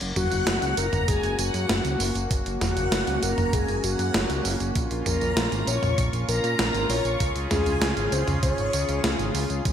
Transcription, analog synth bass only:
0.01 F#1
0.17 F#1
0.32 F#1
0.47 F#1
0.62 C#2
0.78 F#1
0.93 F#1
1.08 F#1
1.24 F#1
1.39 F#1
1.54 F#2
1.69 F#1
1.85 C#2
2.00 F#1
2.16 F#1
2.31 F#1
2.46 F#1
2.61 F#1
2.77 F#1
2.92 F#1
3.08 C#2
3.23 F#1
3.38 F#1
3.53 F#1
3.69 F#1
3.84 F#1
3.99 F#2
4.15 F#1
4.30 C#2
4.45 F#1
4.60 F#1
4.76 A#1
4.91 A#1
5.06 A#1
5.22 A#1
5.37 A#1
5.52 G#1
5.67 A#1
5.82 A#1
5.98 A#1
6.13 A#1
6.29 A#1
6.44 A#2
6.59 A#1
6.74 G#1
6.90 A#1
7.05 A#1
7.20 C#2
7.36 C#2
7.51 C#2
7.66 C#2
7.82 C#2
7.97 G#1
8.12 C#2
8.28 C#2
8.43 C#2
8.58 G#1
8.74 C#2
8.89 C#2
9.04 C#2
9.19 G#1
9.35 C#2
9.50 C#2
9.65 F#1

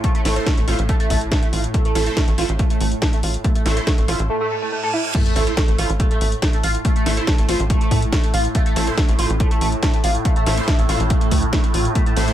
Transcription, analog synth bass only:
0.25 A1
0.58 A1
0.68 A1
0.79 A1
1.10 A1
1.53 A1
1.95 A1
2.28 A1
2.38 A1
2.49 A1
2.81 A1
3.23 A1
3.66 A1
3.98 A1
4.08 A1
4.19 A1
5.36 A1
5.68 A1
5.78 A1
5.90 A1
6.21 A1
6.64 A1
7.06 A1
7.38 A1
7.49 A1
7.60 A1
7.91 A2
8.34 A1
8.76 A1
9.09 A1
9.19 A1
9.30 A1
9.61 A1
10.04 A1
10.46 A1
10.79 A1
10.89 A1
11.00 A1
11.32 D2
11.74 A1
12.17 A1

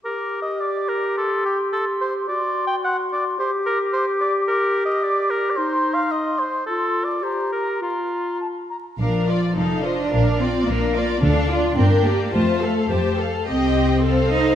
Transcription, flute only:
0.04 D6
0.61 D6
1.17 C6
1.73 C6
2.30 C6
2.85 C6
3.40 D6
4.49 D6
5.04 D6
5.56 C6
6.12 C6
6.67 C6
7.24 A#5
7.82 A#5
8.40 A5
8.70 A#5

